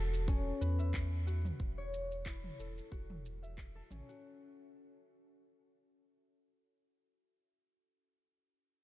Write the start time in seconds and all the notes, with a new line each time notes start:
Already playing: E1 F#4 A4 E5
0.14 shaker
0.28 C#4, kick, shaker
0.61 E2 B4, shaker
0.79 E5, shaker
0.94 kick, clap, shaker
1.27 F#4, shaker
1.45 mid tom, shaker
1.60 E1, kick, shaker
1.78 C#5
1.94 shaker
2.12 shaker
2.26 E4, kick, clap, shaker
2.44 mid tom
2.59 E1 A4, shaker
2.78 shaker
2.91 E1 F#4, kick, shaker
3.10 mid tom
3.26 shaker
3.43 E5, shaker
3.58 kick, clap, shaker
3.75 A4
3.91 A1 C#4, mid tom, shaker
4.09 F#4, shaker